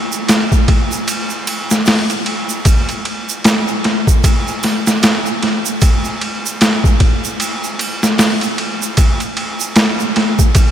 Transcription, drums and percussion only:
0.12 shaker medium
0.28 snare loud
0.28 ride medium
0.28 shaker medium
0.52 kick medium
0.52 shaker soft
0.68 kick medium
0.68 ride medium
0.92 shaker medium
1.08 ride medium
1.08 shaker medium
1.30 shaker soft
1.47 ride medium
1.47 triangle medium
1.71 snare soft
1.71 shaker medium
1.86 snare loud
1.86 open hi-hat medium
1.86 shaker medium
2.10 ride soft
2.10 shaker soft
2.26 ride medium
2.49 shaker medium
2.65 kick loud
2.65 ride medium
2.65 shaker medium
2.89 ride soft
2.89 shaker soft
3.05 ride medium
3.29 shaker medium
3.44 snare loud
3.44 ride medium
3.44 shaker medium
3.68 shaker soft
3.84 snare soft
3.84 ride medium
4.07 kick medium
4.07 shaker medium
4.24 kick loud
4.24 ride medium
4.24 shaker medium
4.47 shaker soft
4.63 snare soft
4.63 ride medium
4.63 triangle medium
4.87 snare medium
4.87 shaker medium
5.03 snare loud
5.03 ride medium
5.03 shaker medium
5.26 shaker soft
5.43 snare soft
5.43 ride medium
5.65 shaker medium
5.81 kick loud
5.81 ride medium
5.81 shaker medium
6.05 shaker soft
6.21 ride medium
6.46 shaker medium
6.61 snare loud
6.61 ride medium
6.61 shaker medium
6.84 kick medium
6.84 shaker soft
7.00 kick medium
7.00 ride medium
7.24 shaker medium
7.40 ride medium
7.40 shaker medium
7.64 shaker soft
7.79 ride medium
7.79 triangle medium
8.03 snare medium
8.03 shaker medium
8.18 snare loud
8.18 open hi-hat medium
8.18 shaker medium
8.41 ride soft
8.41 shaker soft
8.58 ride medium
8.82 shaker medium
8.97 kick loud
8.97 ride medium
8.97 shaker medium
9.20 ride soft
9.20 shaker soft
9.37 ride medium
9.60 shaker medium
9.76 snare loud
9.76 ride medium
9.76 shaker medium
10.00 shaker soft
10.16 snare soft
10.16 ride medium
10.39 kick loud
10.39 shaker medium
10.55 kick loud
10.55 ride medium
10.55 shaker medium

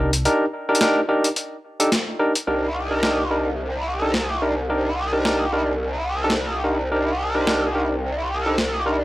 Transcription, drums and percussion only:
0.13 closed hi-hat medium
0.25 closed hi-hat medium
0.75 closed hi-hat medium
0.81 snare loud
0.81 closed hi-hat medium
1.24 closed hi-hat medium
1.36 closed hi-hat medium
1.80 closed hi-hat medium
1.92 snare loud
1.92 closed hi-hat medium
2.35 closed hi-hat medium
3.03 snare loud
4.14 snare loud
5.25 snare loud
6.30 snare loud
7.47 snare loud
8.58 snare loud

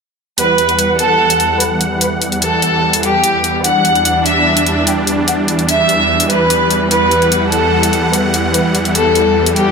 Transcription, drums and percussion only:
0.38 closed hi-hat medium
0.58 closed hi-hat soft
0.69 closed hi-hat soft
0.79 closed hi-hat medium
0.99 closed hi-hat soft
1.30 closed hi-hat medium
1.40 closed hi-hat soft
1.60 closed hi-hat medium
1.81 closed hi-hat medium
2.01 closed hi-hat medium
2.22 closed hi-hat soft
2.32 closed hi-hat soft
2.42 closed hi-hat medium
2.62 closed hi-hat soft
2.93 closed hi-hat medium
3.03 closed hi-hat soft
3.24 closed hi-hat medium
3.44 closed hi-hat medium
3.64 closed hi-hat medium
3.85 closed hi-hat soft
3.95 closed hi-hat soft
4.05 closed hi-hat medium
4.26 closed hi-hat soft
4.57 closed hi-hat medium
4.66 closed hi-hat soft
4.87 closed hi-hat medium
5.07 closed hi-hat medium
5.28 closed hi-hat medium
5.48 closed hi-hat soft
5.59 closed hi-hat soft
5.69 closed hi-hat medium
5.89 closed hi-hat soft
6.20 closed hi-hat medium
6.30 closed hi-hat soft
6.50 closed hi-hat medium
6.71 closed hi-hat medium
6.91 closed hi-hat medium
7.11 closed hi-hat soft
7.22 closed hi-hat soft
7.32 closed hi-hat medium
7.52 closed hi-hat soft
7.83 closed hi-hat medium
7.93 closed hi-hat soft
8.13 closed hi-hat medium
8.34 closed hi-hat medium
8.54 closed hi-hat medium
8.75 closed hi-hat soft
8.85 closed hi-hat soft
8.95 closed hi-hat medium
9.15 closed hi-hat soft
9.46 closed hi-hat medium
9.56 closed hi-hat soft

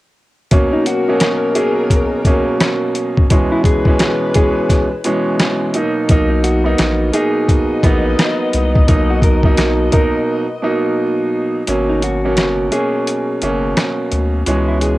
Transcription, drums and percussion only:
0.51 kick loud
0.51 closed hi-hat medium
0.86 closed hi-hat medium
1.20 cross-stick medium
1.20 snare medium
1.20 closed hi-hat loud
1.55 closed hi-hat medium
1.90 kick medium
1.90 closed hi-hat medium
2.25 kick medium
2.25 closed hi-hat medium
2.60 cross-stick medium
2.60 snare loud
2.60 closed hi-hat medium
2.95 closed hi-hat medium
3.17 kick loud
3.30 kick loud
3.30 closed hi-hat medium
3.64 kick medium
3.64 closed hi-hat medium
3.85 kick medium
3.99 cross-stick medium
3.99 snare medium
3.99 closed hi-hat loud
4.34 kick medium
4.34 closed hi-hat medium
4.69 kick medium
4.69 snare soft
4.69 closed hi-hat medium
5.04 closed hi-hat medium
5.40 cross-stick medium
5.40 snare loud
5.40 closed hi-hat medium
5.74 closed hi-hat medium
6.09 kick loud
6.09 closed hi-hat medium
6.44 closed hi-hat medium
6.78 cross-stick medium
6.78 snare medium
6.78 closed hi-hat medium
7.13 closed hi-hat medium
7.49 kick medium
7.49 closed hi-hat medium
7.83 kick loud
7.83 closed hi-hat medium
8.19 cross-stick medium
8.19 snare loud
8.19 closed hi-hat medium
8.53 closed hi-hat medium
8.75 kick loud
8.88 kick loud
8.88 closed hi-hat medium
9.22 kick medium
9.22 closed hi-hat medium
9.43 kick medium
9.57 cross-stick medium
9.57 snare medium
9.57 closed hi-hat loud
9.92 kick medium
9.92 closed hi-hat medium
11.67 closed hi-hat medium
12.02 closed hi-hat medium
12.37 cross-stick medium
12.37 snare loud
12.37 closed hi-hat loud
12.72 closed hi-hat medium
13.07 closed hi-hat medium
13.42 closed hi-hat medium
13.77 cross-stick medium
13.77 snare loud
13.77 closed hi-hat medium
14.11 closed hi-hat medium
14.46 closed hi-hat medium
14.81 closed hi-hat medium

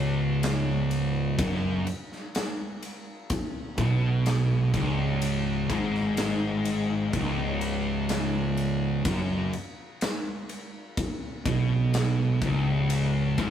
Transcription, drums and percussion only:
0.43 snare loud
0.43 ride medium
0.91 ride medium
1.39 kick loud
1.39 ride loud
1.87 ride medium
2.12 snare soft
2.35 snare loud
2.35 ride medium
2.83 ride medium
3.30 kick loud
3.30 ride medium
3.78 kick loud
3.78 ride medium
4.26 snare loud
4.26 ride loud
4.74 kick medium
4.74 ride medium
5.22 ride loud
5.70 kick loud
5.70 ride medium
5.94 snare soft
6.17 snare loud
6.17 ride loud
6.65 ride medium
7.13 kick medium
7.13 ride medium
7.61 ride medium
8.09 snare loud
8.09 ride loud
8.57 ride medium
9.05 kick loud
9.05 ride loud
9.53 ride medium
10.01 snare loud
10.01 ride medium
10.49 ride medium
10.97 kick loud
10.97 ride medium
11.46 kick loud
11.46 ride medium
11.94 snare loud
11.94 ride medium
12.42 kick loud
12.42 ride medium
12.90 ride loud
13.38 kick loud
13.38 ride medium

